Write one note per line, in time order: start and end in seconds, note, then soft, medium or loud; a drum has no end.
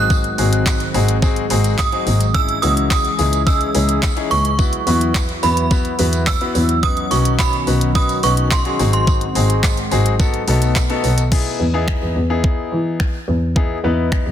0.00 0.21 G#1 loud
0.00 2.30 D#3 medium
0.00 2.31 F#3 medium
0.00 4.55 G#3 medium
0.00 0.27 C4 medium
0.00 2.32 C4 medium
0.00 0.27 D#4 medium
0.00 0.27 F#4 medium
0.00 2.30 F#4 medium
0.00 0.27 G#4 medium
0.00 1.05 F#6 medium
0.10 kick loud
0.10 tambourine medium
0.24 closed hi-hat medium
0.38 0.77 G#1 medium
0.38 0.80 C4 medium
0.38 0.80 D#4 medium
0.38 0.80 F#4 medium
0.38 0.80 G#4 medium
0.38 open hi-hat medium
0.38 tambourine soft
0.53 closed hi-hat medium
0.66 kick loud
0.66 clap loud
0.66 tambourine medium
0.80 closed hi-hat soft
0.94 1.33 G#1 loud
0.94 1.15 C4 medium
0.94 1.15 D#4 medium
0.94 1.15 F#4 medium
0.94 1.15 G#4 loud
0.94 open hi-hat medium
0.94 tambourine medium
1.08 closed hi-hat medium
1.22 1.43 C4 medium
1.22 1.43 D#4 medium
1.22 1.43 F#4 medium
1.22 1.44 G#4 loud
1.22 kick loud
1.22 tambourine soft
1.36 closed hi-hat soft
1.50 1.70 G#1 loud
1.50 1.82 C4 medium
1.50 1.82 D#4 medium
1.50 1.82 F#4 medium
1.50 1.82 G#4 loud
1.50 open hi-hat medium
1.50 tambourine medium
1.64 closed hi-hat medium
1.64 tambourine soft
1.78 2.36 D#6 medium
1.78 kick loud
1.78 clap loud
1.78 tambourine medium
1.92 2.24 C4 medium
1.92 2.24 D#4 medium
1.92 2.24 F#4 medium
1.92 2.24 G#4 medium
1.92 closed hi-hat soft
2.06 2.45 G#1 loud
2.06 open hi-hat medium
2.06 tambourine soft
2.20 closed hi-hat medium
2.20 tambourine soft
2.34 4.57 E3 medium
2.34 2.55 C#4 medium
2.34 4.57 C#4 medium
2.34 2.55 D#4 medium
2.34 2.56 E4 medium
2.34 4.57 G#4 medium
2.34 2.56 G#4 medium
2.34 2.63 E6 loud
2.34 kick loud
2.34 tambourine medium
2.49 closed hi-hat medium
2.62 3.01 C#2 loud
2.62 3.04 C#4 medium
2.62 3.04 D#4 medium
2.62 3.05 E4 medium
2.62 3.05 F#4 medium
2.62 2.88 D#6 loud
2.62 open hi-hat medium
2.62 tambourine soft
2.77 closed hi-hat medium
2.90 3.43 D#6 loud
2.90 kick loud
2.90 clap loud
2.90 tambourine medium
3.05 closed hi-hat soft
3.18 3.57 C#2 loud
3.18 3.39 C#4 medium
3.18 3.40 D#4 medium
3.18 3.40 E4 medium
3.18 3.40 G#4 medium
3.18 open hi-hat medium
3.18 tambourine medium
3.33 closed hi-hat medium
3.33 tambourine soft
3.46 3.67 C#4 medium
3.46 3.67 D#4 medium
3.46 3.68 E4 medium
3.46 3.68 G#4 medium
3.46 3.99 E6 medium
3.46 kick loud
3.46 tambourine medium
3.61 closed hi-hat soft
3.74 3.94 C#2 loud
3.74 4.06 C#4 medium
3.74 4.06 D#4 medium
3.74 4.06 E4 medium
3.74 4.06 G#4 medium
3.74 open hi-hat medium
3.74 tambourine medium
3.89 closed hi-hat medium
4.03 kick loud
4.03 clap loud
4.03 tambourine medium
4.16 4.48 C#4 medium
4.16 4.48 D#4 medium
4.16 4.48 E4 medium
4.16 4.48 G#4 medium
4.16 closed hi-hat soft
4.31 4.69 C#2 loud
4.31 5.46 C#6 loud
4.31 open hi-hat medium
4.31 tambourine soft
4.45 closed hi-hat medium
4.59 11.28 F#3 medium
4.59 4.80 B3 medium
4.59 8.75 B3 medium
4.59 4.80 E4 medium
4.59 6.81 E4 medium
4.59 4.80 F#4 medium
4.59 4.80 B4 medium
4.59 kick loud
4.59 tambourine medium
4.73 closed hi-hat medium
4.87 5.25 E2 loud
4.87 5.28 B3 medium
4.87 5.29 E4 medium
4.87 5.29 F#4 medium
4.87 5.29 B4 medium
4.87 open hi-hat medium
4.87 tambourine medium
5.01 closed hi-hat medium
5.15 kick loud
5.15 clap loud
5.15 tambourine medium
5.29 closed hi-hat soft
5.43 5.81 E2 loud
5.43 5.64 B3 medium
5.43 5.64 E4 medium
5.43 5.64 F#4 medium
5.43 5.64 B4 medium
5.43 5.95 B5 medium
5.43 open hi-hat medium
5.43 tambourine medium
5.57 closed hi-hat medium
5.71 5.92 B3 medium
5.71 5.92 E4 medium
5.71 5.92 F#4 medium
5.71 5.92 B4 medium
5.71 kick loud
5.71 tambourine medium
5.85 closed hi-hat soft
5.99 6.18 E2 loud
5.99 6.30 B3 medium
5.99 6.30 E4 medium
5.99 6.30 F#4 medium
5.99 6.30 B4 medium
5.99 open hi-hat medium
5.99 tambourine medium
6.13 closed hi-hat medium
6.13 tambourine soft
6.27 6.85 E6 loud
6.27 kick loud
6.27 clap loud
6.27 tambourine medium
6.41 6.72 B3 medium
6.41 6.72 E4 medium
6.41 6.72 F#4 medium
6.41 6.73 B4 medium
6.41 closed hi-hat soft
6.55 6.93 E2 loud
6.55 open hi-hat medium
6.55 tambourine soft
6.69 closed hi-hat medium
6.83 11.28 D#3 medium
6.83 7.04 C#4 medium
6.83 8.77 C#4 medium
6.83 7.04 D#4 medium
6.83 7.04 F#4 medium
6.83 11.28 F#4 medium
6.83 7.04 B4 medium
6.83 7.09 D#6 loud
6.83 kick loud
6.83 tambourine soft
6.97 closed hi-hat medium
7.11 7.50 B1 medium
7.11 7.53 C#4 medium
7.11 7.53 D#4 medium
7.11 7.53 F#4 medium
7.11 7.53 B4 medium
7.11 7.37 C#6 medium
7.11 open hi-hat medium
7.11 tambourine medium
7.25 closed hi-hat medium
7.39 7.97 B5 medium
7.39 kick loud
7.39 clap loud
7.39 tambourine medium
7.53 closed hi-hat soft
7.67 8.05 B1 loud
7.67 7.88 C#4 medium
7.67 7.88 D#4 medium
7.67 7.88 F#4 medium
7.67 7.88 B4 medium
7.67 open hi-hat medium
7.67 tambourine medium
7.81 closed hi-hat medium
7.95 8.16 C#4 medium
7.95 8.16 D#4 medium
7.95 8.16 F#4 medium
7.95 8.16 B4 medium
7.95 8.08 D#6 loud
7.95 kick loud
7.95 tambourine medium
8.09 closed hi-hat soft
8.09 tambourine soft
8.23 8.42 B1 loud
8.23 8.55 C#4 medium
8.23 8.55 D#4 medium
8.23 8.55 F#4 medium
8.23 8.55 B4 medium
8.23 8.50 C#6 medium
8.23 open hi-hat medium
8.23 tambourine medium
8.37 closed hi-hat medium
8.51 8.92 C6 medium
8.51 kick loud
8.51 clap loud
8.51 tambourine medium
8.65 8.79 C#4 medium
8.65 8.78 D#4 medium
8.65 8.78 F#4 medium
8.65 8.78 G#4 medium
8.65 closed hi-hat soft
8.79 9.18 G#1 loud
8.79 10.18 G#3 medium
8.79 9.24 C4 medium
8.79 10.18 C4 medium
8.79 9.24 D#4 medium
8.79 9.24 F#4 medium
8.79 9.24 G#4 medium
8.79 open hi-hat medium
8.79 tambourine soft
8.93 10.02 C6 medium
8.93 closed hi-hat medium
9.07 kick loud
9.07 tambourine soft
9.21 closed hi-hat medium
9.35 9.74 G#1 medium
9.35 9.77 C4 medium
9.35 9.77 D#4 medium
9.35 9.77 F#4 medium
9.35 9.77 G#4 medium
9.35 open hi-hat medium
9.35 tambourine soft
9.50 closed hi-hat medium
9.63 kick loud
9.63 clap loud
9.63 tambourine medium
9.77 closed hi-hat soft
9.91 10.30 G#1 loud
9.91 10.12 C4 medium
9.91 10.12 D#4 medium
9.91 10.13 F#4 medium
9.91 10.13 G#4 loud
9.91 open hi-hat medium
9.91 tambourine medium
10.06 closed hi-hat medium
10.19 11.31 A3 medium
10.19 10.40 B3 medium
10.19 11.31 B3 medium
10.19 10.41 D#4 medium
10.19 10.41 F#4 medium
10.19 10.41 A4 loud
10.19 kick loud
10.19 tambourine medium
10.34 closed hi-hat soft
10.47 10.67 B1 loud
10.47 10.79 B3 medium
10.47 10.79 D#4 medium
10.47 10.79 F#4 medium
10.47 10.79 A4 loud
10.47 open hi-hat medium
10.47 tambourine medium
10.62 closed hi-hat medium
10.62 tambourine soft
10.76 kick loud
10.76 clap loud
10.76 tambourine medium
10.90 11.21 B3 medium
10.90 11.21 D#4 medium
10.90 11.21 F#4 medium
10.90 11.21 A4 loud
10.90 closed hi-hat soft
11.04 11.23 B1 loud
11.04 open hi-hat medium
11.04 tambourine soft
11.18 closed hi-hat medium
11.18 tambourine soft
11.32 11.63 B3 medium
11.32 11.63 D#4 medium
11.32 11.63 E4 medium
11.32 11.63 G#4 medium
11.32 kick loud
11.32 crash medium
11.60 11.89 E2 medium
11.74 12.15 B3 medium
11.74 12.16 D#4 medium
11.74 12.16 E4 medium
11.74 12.16 G#4 loud
11.88 finger snap loud
11.88 kick loud
12.02 12.11 E2 medium
12.16 12.35 E2 medium
12.30 13.13 B3 medium
12.30 13.13 D#4 medium
12.30 13.14 E4 medium
12.30 13.14 G#4 loud
12.44 kick loud
12.72 13.10 E3 medium
13.00 finger snap loud
13.00 kick loud
13.28 13.66 E2 loud
13.56 13.77 B3 medium
13.56 13.77 D#4 medium
13.56 13.77 E4 medium
13.56 13.77 G#4 medium
13.56 kick loud
13.84 14.13 E2 medium
13.84 14.26 B3 medium
13.84 14.26 D#4 medium
13.84 14.26 E4 medium
13.84 14.26 B4 medium
14.12 finger snap loud
14.12 kick loud
14.26 14.32 E2 medium